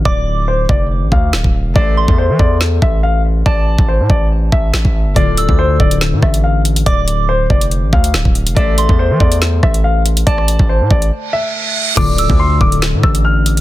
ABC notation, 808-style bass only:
X:1
M:4/4
L:1/16
Q:1/4=141
K:Dm
V:1 name="808-style bass" clef=bass
D,,,6 F,,,3 A,,, D,,2 D,,, D,,,2 F,,, | A,,,3 E,,2 E, E,,4 A,,,6 | A,,,3 A,,,2 A,, A,,,4 A,,,2 A,,, A,,,2 G,,, | D,,,3 D,,3 D,,,3 A,, A,,,6 |
D,,,6 F,,,3 A,,, D,,2 D,,, D,,,2 F,,, | A,,,3 E,,2 E, E,,4 A,,,6 | A,,,3 A,,,2 A,, A,,,2 z8 | D,,,3 D,,3 D,,,3 A,, A,,,6 |]